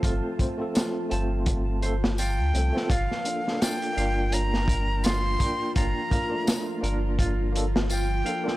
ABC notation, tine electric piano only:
X:1
M:4/4
L:1/16
Q:"Swing 16ths" 1/4=84
K:Gm
V:1 name="Tine electric piano"
[A,CFA]2 [A,CFc] [A,CFA]3 [A,CFc]4 [A,CFA] z3 [A,CFA] [A,CFA] | z2 [B,DFA] [B,DFA]3 [B,DFg]8 [B,DFg]2- | [B,DFg]2 [B,DFB] [A,B,DF]3 [B,DFB]4 [B,DFA] z3 [B,DFA] [B,DFA] |]